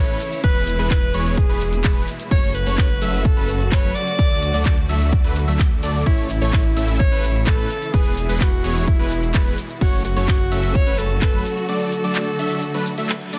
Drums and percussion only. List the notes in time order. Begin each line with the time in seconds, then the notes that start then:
0.09 closed hi-hat
0.20 open hi-hat, shaker
0.32 closed hi-hat, shaker
0.44 kick, closed hi-hat, shaker
0.56 closed hi-hat
0.67 open hi-hat, shaker
0.79 closed hi-hat, shaker
0.90 kick, clap, closed hi-hat, shaker
1.02 closed hi-hat
1.14 open hi-hat, shaker
1.26 closed hi-hat, shaker
1.38 kick, closed hi-hat, shaker
1.49 closed hi-hat
1.61 open hi-hat, shaker
1.73 closed hi-hat, shaker
1.84 kick, clap, open hi-hat, shaker
1.96 closed hi-hat
2.08 open hi-hat, shaker
2.20 closed hi-hat, shaker
2.31 kick, closed hi-hat, shaker
2.43 closed hi-hat
2.55 open hi-hat, shaker
2.66 closed hi-hat, shaker
2.78 kick, clap, closed hi-hat, shaker
2.90 closed hi-hat
3.02 open hi-hat, shaker
3.13 closed hi-hat, shaker
3.25 kick, closed hi-hat, shaker
3.37 closed hi-hat
3.49 open hi-hat, shaker
3.60 closed hi-hat, shaker
3.72 kick, clap, closed hi-hat, shaker
3.84 closed hi-hat
3.96 open hi-hat, shaker
4.07 closed hi-hat, shaker
4.19 kick, closed hi-hat, shaker
4.31 closed hi-hat
4.42 open hi-hat, shaker
4.54 closed hi-hat, shaker
4.66 kick, clap, closed hi-hat, shaker
4.78 closed hi-hat
4.89 open hi-hat, shaker
5.01 closed hi-hat, shaker
5.13 kick, closed hi-hat, shaker
5.24 closed hi-hat
5.36 open hi-hat, shaker
5.48 closed hi-hat, shaker
5.59 kick, clap, open hi-hat, shaker
5.71 closed hi-hat
5.83 open hi-hat, shaker
5.95 closed hi-hat, shaker
6.06 kick, closed hi-hat, shaker
6.18 closed hi-hat
6.30 open hi-hat, shaker
6.42 closed hi-hat, shaker
6.53 kick, clap, closed hi-hat, shaker
6.65 closed hi-hat
6.77 open hi-hat, shaker
6.88 closed hi-hat, shaker
7.00 kick, closed hi-hat, shaker
7.12 closed hi-hat
7.24 open hi-hat, shaker
7.35 closed hi-hat, shaker
7.47 kick, clap, closed hi-hat, shaker
7.59 closed hi-hat
7.70 open hi-hat, shaker
7.82 closed hi-hat, shaker
7.94 kick, closed hi-hat, shaker
8.06 closed hi-hat
8.17 open hi-hat, shaker
8.29 closed hi-hat, shaker
8.41 kick, clap, closed hi-hat, shaker
8.53 closed hi-hat
8.64 open hi-hat, shaker
8.76 closed hi-hat, shaker
8.88 kick, closed hi-hat, shaker
8.99 closed hi-hat
9.11 open hi-hat, shaker
9.23 closed hi-hat, shaker
9.34 kick, clap, open hi-hat, shaker
9.46 closed hi-hat
9.58 open hi-hat, shaker
9.70 closed hi-hat, shaker
9.81 kick, closed hi-hat, shaker
9.93 closed hi-hat
10.05 open hi-hat, shaker
10.17 closed hi-hat, shaker
10.28 kick, clap, closed hi-hat, shaker
10.40 closed hi-hat
10.52 open hi-hat, shaker
10.63 closed hi-hat, shaker
10.75 kick, closed hi-hat, shaker
10.87 closed hi-hat
10.98 open hi-hat, shaker
11.10 closed hi-hat, shaker
11.22 kick, clap, closed hi-hat, shaker
11.34 closed hi-hat
11.45 open hi-hat, shaker
11.57 closed hi-hat, shaker
11.69 closed hi-hat, shaker
11.80 closed hi-hat
11.92 open hi-hat, shaker
12.04 closed hi-hat, shaker
12.15 clap, closed hi-hat, shaker
12.27 closed hi-hat
12.39 open hi-hat, shaker
12.51 closed hi-hat, shaker
12.62 closed hi-hat, shaker
12.74 closed hi-hat
12.86 open hi-hat, shaker
12.98 closed hi-hat, shaker
13.09 clap, open hi-hat, shaker
13.21 closed hi-hat
13.33 open hi-hat, shaker